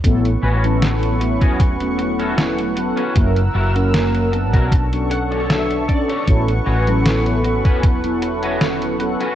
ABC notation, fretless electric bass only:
X:1
M:4/4
L:1/16
Q:1/4=77
K:A
V:1 name="Fretless electric bass" clef=bass
A,,,2 A,,,4- A,,, E,,,8 z | F,,,2 F,,,4- F,,, B,,,8 z | A,,,2 A,,,4- A,,, E,,,8 z |]